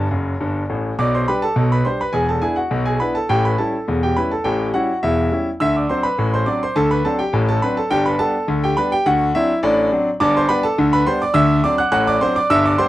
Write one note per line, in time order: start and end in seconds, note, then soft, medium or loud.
0.00 0.37 G5 medium
0.11 0.33 F#1 medium
0.11 0.33 F#2 medium
0.40 0.62 G1 medium
0.40 0.62 G2 medium
0.70 0.92 A1 medium
0.70 0.91 A2 medium
0.99 1.23 B1 medium
0.99 1.23 B2 medium
0.99 1.13 D5 medium
0.99 1.13 D6 medium
1.15 1.28 C5 medium
1.15 1.28 C6 medium
1.28 1.44 G3 medium
1.28 1.44 D4 soft
1.28 1.45 G4 soft
1.28 1.42 B4 medium
1.28 1.42 B5 medium
1.42 1.70 A4 medium
1.42 1.65 A5 medium
1.56 1.81 B1 medium
1.56 1.81 B2 medium
1.72 1.86 B4 medium
1.72 1.86 B5 medium
1.85 2.01 G3 soft
1.85 2.01 D4 soft
1.85 2.02 G4 soft
1.85 1.99 C5 medium
1.85 1.99 C6 medium
2.01 2.14 B4 medium
2.01 2.15 B5 medium
2.13 2.38 E1 medium
2.13 2.38 E2 medium
2.13 2.28 G#4 medium
2.13 2.28 G#5 medium
2.29 2.43 A4 medium
2.29 2.43 A5 medium
2.42 2.58 B3 soft
2.42 2.58 D4 soft
2.42 2.58 E4 soft
2.42 2.56 G#4 medium
2.42 2.57 G#5 medium
2.56 2.84 F#4 medium
2.56 2.80 F#5 medium
2.71 2.96 B1 medium
2.71 2.96 B2 medium
2.86 3.00 G#4 medium
2.86 3.00 G#5 medium
3.00 3.16 B3 soft
3.00 3.17 D4 soft
3.00 3.17 E4 soft
3.00 3.14 B4 medium
3.00 3.15 B5 medium
3.15 3.29 A4 medium
3.15 3.29 A5 medium
3.29 3.54 A1 medium
3.29 3.54 A2 medium
3.29 3.43 G4 medium
3.29 3.44 G5 medium
3.45 3.59 B4 medium
3.45 3.59 B5 medium
3.58 3.75 G3 soft
3.58 3.75 C#4 soft
3.58 3.75 E4 medium
3.58 3.99 A4 medium
3.58 3.93 A5 medium
3.88 4.12 E1 medium
3.88 4.12 E2 medium
4.03 4.16 G4 medium
4.03 4.17 G5 medium
4.16 4.32 G3 soft
4.16 4.33 C#4 soft
4.16 4.33 E4 medium
4.16 4.30 B4 medium
4.16 4.31 B5 medium
4.31 4.45 A4 medium
4.31 4.45 A5 medium
4.44 4.69 A1 medium
4.44 4.69 A2 medium
4.44 4.72 G4 medium
4.44 4.68 G5 medium
4.74 4.90 G3 soft
4.74 4.90 C#4 soft
4.74 4.91 E4 medium
4.74 5.01 F#4 medium
4.74 4.97 F#5 medium
5.03 5.27 E1 medium
5.03 5.27 E2 medium
5.03 5.31 E4 medium
5.03 5.49 E5 medium
5.32 5.48 G3 soft
5.32 5.48 C#4 soft
5.32 5.48 E4 soft
5.60 5.85 D2 medium
5.60 5.85 D3 medium
5.60 5.74 E5 medium
5.60 5.74 E6 loud
5.76 5.89 D5 soft
5.76 5.90 D6 medium
5.89 6.05 F#3 soft
5.89 6.06 C4 soft
5.89 6.06 D4 medium
5.89 6.03 C5 medium
5.89 6.03 C6 medium
6.03 6.31 B4 medium
6.03 6.30 B5 medium
6.18 6.42 A1 medium
6.18 6.43 A2 medium
6.34 6.47 C5 medium
6.34 6.47 C6 medium
6.46 6.63 F#3 soft
6.46 6.63 C4 soft
6.46 6.63 D4 medium
6.46 6.60 D5 medium
6.46 6.61 D6 medium
6.63 6.76 C5 medium
6.63 6.76 C6 medium
6.76 7.00 D2 medium
6.76 7.00 D3 medium
6.76 6.89 A4 medium
6.76 6.90 A5 loud
6.91 7.04 B4 medium
6.91 7.04 B5 medium
7.05 7.21 F#3 soft
7.05 7.21 C4 soft
7.05 7.21 D4 medium
7.05 7.18 A4 medium
7.05 7.19 A5 medium
7.19 7.46 G4 medium
7.19 7.41 G5 medium
7.33 7.57 A1 medium
7.33 7.57 A2 medium
7.49 7.62 A4 medium
7.49 7.62 A5 medium
7.62 7.78 F#3 medium
7.62 7.79 C4 medium
7.62 7.79 D4 medium
7.62 7.76 B4 medium
7.62 7.76 B5 medium
7.77 7.90 A4 medium
7.77 7.91 A5 medium
7.91 8.15 G1 medium
7.91 8.15 G2 medium
7.91 8.04 G4 medium
7.91 8.04 G5 loud
8.06 8.19 B4 medium
8.06 8.19 B5 medium
8.19 8.35 G3 soft
8.19 8.35 B3 medium
8.19 8.36 D4 medium
8.19 8.60 A4 medium
8.19 8.53 A5 loud
8.48 8.72 D2 medium
8.48 8.72 D3 medium
8.64 8.77 G4 medium
8.64 8.77 G5 medium
8.77 8.93 G3 medium
8.77 8.93 B3 soft
8.77 8.93 D4 medium
8.77 8.91 B4 medium
8.77 8.91 B5 medium
8.92 9.05 G4 medium
8.92 9.06 G5 medium
9.06 9.30 D2 medium
9.06 9.30 D3 medium
9.06 9.33 F#4 medium
9.06 9.33 F#5 loud
9.35 9.51 F#3 medium
9.35 9.51 C4 medium
9.35 9.51 D4 medium
9.35 9.62 E4 medium
9.35 9.57 E5 medium
9.63 9.87 A1 medium
9.63 9.87 A2 medium
9.63 9.91 D4 medium
9.63 10.09 D5 medium
9.92 10.08 F#3 medium
9.92 10.08 C4 soft
9.92 10.08 D4 medium
10.20 10.45 G1 medium
10.20 10.45 G2 loud
10.20 10.34 D5 medium
10.20 10.34 D6 loud
10.37 10.49 C5 medium
10.37 10.50 C6 loud
10.49 10.65 G3 medium
10.49 10.65 B3 medium
10.49 10.66 D4 medium
10.49 10.63 B4 medium
10.49 10.63 B5 loud
10.63 10.90 A4 medium
10.63 10.86 A5 loud
10.78 11.02 D2 medium
10.78 11.02 D3 loud
10.93 11.06 B4 medium
10.93 11.06 B5 loud
11.07 11.22 G3 medium
11.07 11.23 B3 medium
11.07 11.23 D4 medium
11.07 11.20 C5 medium
11.07 11.20 C6 loud
11.22 11.35 D5 medium
11.22 11.35 D6 loud
11.34 11.59 D2 loud
11.34 11.59 D3 medium
11.34 11.62 E5 medium
11.34 11.57 E6 loud
11.64 11.80 F#3 medium
11.64 11.80 C4 medium
11.64 11.80 D4 medium
11.64 11.77 D5 medium
11.64 11.78 D6 loud
11.78 11.91 F#5 medium
11.78 11.90 F#6 loud
11.92 12.16 A1 medium
11.92 12.16 A2 medium
11.92 12.05 F#5 loud
11.92 12.06 F#6 loud
12.07 12.21 D5 medium
12.07 12.21 D6 loud
12.21 12.37 F#3 medium
12.21 12.37 C4 medium
12.21 12.38 D4 medium
12.21 12.35 C5 medium
12.21 12.35 C6 loud
12.36 12.50 D5 medium
12.36 12.50 D6 loud
12.50 12.74 G1 medium
12.50 12.74 G2 loud
12.50 12.64 E5 loud
12.50 12.64 E6 loud
12.66 12.78 D5 medium
12.66 12.79 D6 loud
12.78 12.88 G3 medium
12.78 12.88 B3 medium
12.78 12.88 D4 medium
12.78 12.88 C5 medium
12.78 12.88 C6 loud